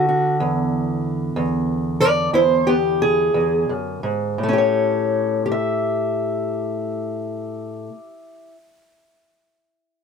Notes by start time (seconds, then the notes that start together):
Already playing: D3
0.09 F#4
0.40 E2
1.36 E2
2.00 B4 D5
2.33 E2 E4 C5
2.67 B3 G4
3.02 G#4
3.34 E2
3.69 F#2
4.03 G#2
4.38 A2
4.43 A3
4.49 C#4
4.53 G4
4.58 C#5
5.46 G4
5.52 E5